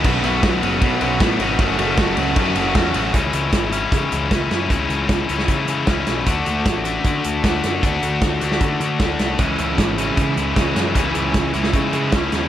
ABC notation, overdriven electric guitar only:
X:1
M:4/4
L:1/8
Q:1/4=154
K:C#m
V:1 name="Overdriven electric guitar"
[B,,F,B,CF] [B,,F,B,CF] [B,,F,B,CF] [B,,F,B,CF] [B,,F,B,CF] [B,,F,B,CF] [B,,F,B,CF] [B,,F,B,CF] | [F,,C,F,A,CF] [F,,C,F,A,CF] [F,,C,F,A,CF] [F,,C,F,A,CF] [F,,C,F,A,CF] [F,,C,F,A,CF] [F,,C,F,A,CF] [F,,C,F,A,CF] | [C,E,G,CE]3 [C,E,G,CE]3 [C,E,G,CE]2 | [C,E,G,CE]3 [C,E,G,CE]3 [C,E,G,CE]2 |
[=D,A,=DF]3 [D,A,DF]3 [D,A,DF]2 | [=D,A,=DF]3 [D,A,DF]3 [D,A,DF]2 | [C,E,G,CE]3 [C,E,G,CE]3 [C,E,G,CE]2 | [C,E,G,CE]3 [C,E,G,CE]3 [C,E,G,CE]2 |]